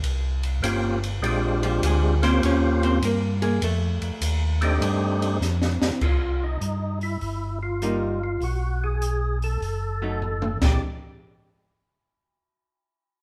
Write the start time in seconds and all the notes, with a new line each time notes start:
0.03 C2, ride
0.43 ride
0.62 G1 A#3 C4 C#4 F4 G4, hi-hat pedal, ride
1.04 ride
1.22 A#1 G#3 C4 D4 F4 G4, ride
1.63 F3 F4, ride
1.82 D2 G#3 G#4, hi-hat pedal, ride
2.22 A#3 C4 C#4 F4 G4 C5, snare, ride
2.42 D#2 C#4 C#5, ride
2.83 C4 C5, ride
3.01 G2 A#3 A#4, hi-hat pedal, ride
3.42 A#3 G#4, ride
3.62 F2 A3 A4, ride
4.01 F2, ride
4.21 D#2, hi-hat pedal, ride
4.61 A3 C4 D4 D#4 G4, ride
4.81 G2, ride
5.22 ride
5.41 F2, snare, hi-hat pedal
5.62 snare
5.81 F2, snare
6.01 C2 F4, kick, crash
6.44 D#4
6.61 G2, closed hi-hat
7.01 E4, open hi-hat
7.21 G1, open hi-hat
7.63 F4
7.82 G3 A#3 D#4, closed hi-hat
8.24 F4
8.41 B1 F#4, open hi-hat
8.84 G#4
9.02 closed hi-hat
9.42 A4, open hi-hat
9.61 F#1, open hi-hat
10.02 F#3 A3 D#4
10.22 floor tom
10.42 mid tom
10.61 A#1 G#3 D4 G4 D5, kick, snare, crash